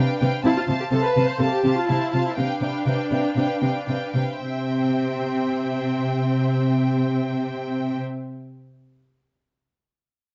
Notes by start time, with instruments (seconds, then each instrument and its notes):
Already playing: viola section D4, violin section B4 F5 G5
0.20 cello section C3, violin section B4 F5 G5
0.43 cello section C3, viola section E4, violin section C5 F5 A5
0.57 viola section F4
0.67 cello section C3, violin section C5 F5 A5
0.81 viola section G4
0.91 cello section C3, viola section A4, violin section C5 F5 A5
1.04 viola section B4
1.16 cello section C3, violin section C5 F5 A5
1.28 viola section C5
1.39 cello section C3, viola section A4, violin section C5 F5 A5
1.52 viola section G4
1.64 cello section C3, violin section C5 F5 A5
1.77 viola section F4
1.88 cello section C3, viola section E4, violin section C5 F5 A5
2.12 cello section C3, viola section F4, violin section C5 F5 A5
2.26 viola section E4
2.37 cello section C3, viola section D4, violin section B4 F5 G5
2.61 cello section C3, violin section B4 F5 G5
2.87 cello section C3, violin section B4 F5 G5
3.11 cello section C3, violin section B4 F5 G5
3.36 cello section C3, violin section B4 F5 G5
3.61 cello section C3, violin section B4 F5 G5
3.86 cello section C3, violin section B4 F5 G5
4.12 cello section C3, violin section B4 F5 G5
4.38 cello section C3, viola section C4, violin section C5 E5 G5